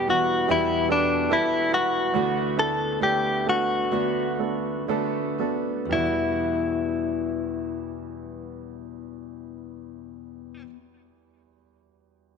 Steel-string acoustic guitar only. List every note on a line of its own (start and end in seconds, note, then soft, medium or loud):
0.07 0.48 E3 soft
0.07 0.48 G3 soft
0.07 0.49 B3 soft
0.07 0.48 F#4 soft
0.48 1.30 E2 medium
0.48 1.30 B2 medium
0.48 1.28 E3 medium
0.48 1.29 G3 medium
0.48 1.31 B3 medium
0.48 1.32 F#4 medium
1.29 2.13 E3 soft
1.29 2.14 G3 medium
1.29 2.15 B3 soft
1.29 2.15 F#4 medium
2.14 2.99 D3 medium
2.14 3.00 A3 soft
2.14 3.02 B3 medium
2.14 3.93 F#4 medium
3.00 3.90 D3 soft
3.00 3.91 A3 soft
3.00 3.92 B3 soft
3.91 4.87 D3 medium
3.91 4.88 A3 medium
3.91 4.90 B3 medium
3.91 4.91 F#4 medium
4.88 5.39 D3 soft
4.88 5.40 A3 medium
4.88 5.39 B3 soft
4.88 5.37 F#4 soft
5.38 5.92 A3 soft
5.38 5.92 B3 soft
5.38 5.91 F#4 soft
5.85 10.59 E2 soft
5.91 10.64 B2 soft
5.95 10.69 E3 medium
5.99 10.73 G3 medium
5.99 10.76 B3 soft
6.06 10.80 F#4 soft